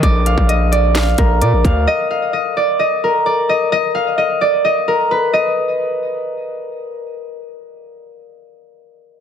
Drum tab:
HH |x-x-x-x-x-x-x-x-|----------------|----------------|----------------|
CP |--------x-------|----------------|----------------|----------------|
SD |--------o-------|----------------|----------------|----------------|
BD |o--o------o---o-|----------------|----------------|----------------|

HH |----------------|
CP |----------------|
SD |----------------|
BD |----------------|